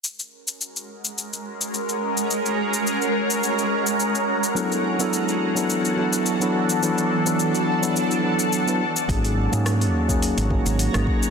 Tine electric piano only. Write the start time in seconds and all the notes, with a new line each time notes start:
4.55 F#3 B3 D4 E4 A4
4.99 F#3 B3 D4 E4 A4
5.55 F#3 B3 D4 E4 A4
5.97 F#3 B3 D4 E4 A4
6.40 F#3 B3 D4 E4 A4
6.82 F#3 B3 D4 E4 A4
7.25 F#3 B3 D4 E4 A4
7.82 F#3 B3 D4 E4 A4
8.23 F#3 B3 D4 E4 A4
8.66 F#3 B3 D4 E4 B4
9.08 F#3 A#3 C#4 D#4 G#4
9.51 F#3 A#3 C#4 D#4 G#4
10.08 F#3 A#3 C#4 D#4 G#4
10.49 F#3 A#3 C#4 D#4 G#4
10.92 F#3 A#3 C#4 D#4 G#4